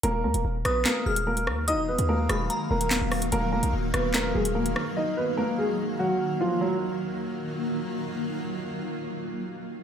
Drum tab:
HH |x--x--x-x--x-x--|x--x--x-x--xx-ox|x--x--x-x--x-x--|----------------|
CP |--------x-------|------------x---|--------x-------|----------------|
SD |------r-o-----r-|------r-----o-r-|------r-o-----r-|----------------|

HH |----------------|----------------|
CP |----------------|----------------|
SD |----------------|----------------|